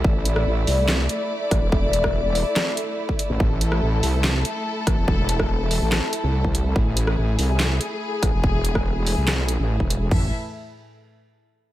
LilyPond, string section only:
\new Staff \with { instrumentName = "String section" } { \time 4/4 \key a \minor \tempo 4 = 143 << { d''1~ | d''1 | a'1~ | a'1 |
gis'1~ | gis'1 | <a, e e' a' e''>8 r2. r8 | } \\ { <a e'>1~ | <a e'>1~ | <a e'>1~ | <a e'>1~ |
<a e'>1~ | <a e'>1 | r1 | } >> }